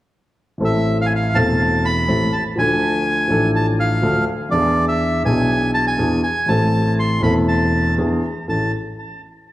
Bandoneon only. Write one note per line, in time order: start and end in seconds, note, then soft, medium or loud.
0.65 0.98 E5 medium
1.01 1.07 F5 medium
1.06 1.13 G#5 medium
1.16 1.37 F5 medium
1.35 1.86 A5 medium
1.85 2.35 B5 medium
2.33 2.44 A5 medium
2.59 3.51 G#5 medium
3.56 3.66 A5 medium
3.80 4.25 F5 medium
4.51 4.85 D5 medium
4.88 5.23 E5 medium
5.25 5.71 G#5 medium
5.74 5.86 A5 medium
5.87 6.21 G#5 medium
6.23 6.49 G#5 medium
6.49 6.94 A5 medium
6.99 7.22 C6 medium
7.23 7.34 B5 medium
7.48 7.95 A5 medium
8.49 8.72 A5 medium